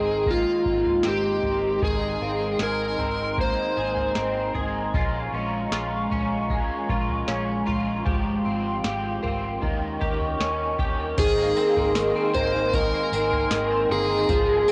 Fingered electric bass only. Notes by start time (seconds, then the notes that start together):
Already playing: G#1
0.66 G#1
1.05 G#1
1.44 G#1
1.82 G#1
2.21 G#1
2.60 G#1
2.98 G#1
3.77 G#1
4.16 G#1
4.55 G#1
4.94 A#1
5.32 A#1
5.71 A#1
6.10 A#1
6.89 A#1
7.28 A#1
7.67 A#1
8.06 G#1
8.46 G#1
8.84 G#1
9.23 G#1
9.62 D#2
10.02 D#2
10.40 D#2
10.79 D#2
11.18 G#1
11.77 G#1
12.35 G#1
13.12 G#1
13.51 G#1
13.90 G1
14.29 G#1